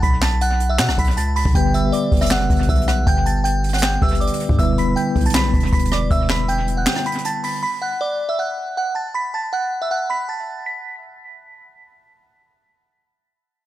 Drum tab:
HH |x-----------------------x-----------x-----------------------x---x---x---x-----------o-----------|x-----------x-----------x-----------x--x--x--x--------------x---x---x---x---x---x---x-----------|x-----------x-----------x-----------x--x--x--x--------------x---x---x---x---x---x---x-----------|x-----------x-----------x-----------x--x--x--x--------------x---x---x---x---x---x---x-----------|
CP |------------x-----------------------------------x-----------------------------------------------|------------------------------------------------x-----------------------------------------------|------------------------------------------------x-----------------------------------------------|------------------------------------------------x-----------------------------------------------|
SD |------------o-----------------------------------o-----r-----------------------------------------|------------------------------------------r-----o-----------------------------------r-----------|------------------------------------------r-----o-----------------------------------------------|------------------------------------------------o-----------------------------------r-----------|
BD |o-----------------------------------------------------------o-----------------------------o-----|o-----------------------------------o-----------------------o-----------o-----------------------|o-----------------------------------------------------------o-----------------------------o-----|o-----------------------------------o-----------------------o-----------o-----------------------|

HH |x-----------------------x-----------x-----------------------x---x---x---x-----------o-----------|------------------------------------------------------------------------------------------------|------------------------------------------------------------------------------------------------|------------------------------------------------------------------------------------------------|
CP |------------x-----------------------------------x-----------------------------------------------|------------------------------------------------------------------------------------------------|------------------------------------------------------------------------------------------------|------------------------------------------------------------------------------------------------|
SD |------------o-----------------------------------o-----r-----------------------------------------|------------------------------------------------------------------------------------------------|------------------------------------------------------------------------------------------------|------------------------------------------------------------------------------------------------|
BD |o-----------------------------------------------------------------------------------------------|------------------------------------------------------------------------------------------------|------------------------------------------------------------------------------------------------|------------------------------------------------------------------------------------------------|

HH |------------------------------------------------------------------------------------------------|
CP |------------------------------------------------------------------------------------------------|
SD |------------------------------------------------------------------------------------------------|
BD |------------------------------------------------------------------------------------------------|